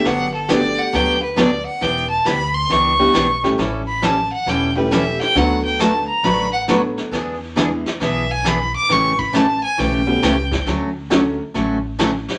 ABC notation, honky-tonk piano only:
X:1
M:4/4
L:1/8
Q:"Swing" 1/4=136
K:D
V:1 name="Honky-tonk piano"
z2 [A,B,DFG]3 z3 | z4 z [G,B,DEG] z [G,A,CEG] | z4 z [G,A,CEG]3 | [F,A,B,DF]3 z3 [F,A,B,DF]2 |
z2 [E,^G,B,DE] z4 z | z4 z [G,A,B,CF] z2 | z2 [F,A,CDF] z4 z |]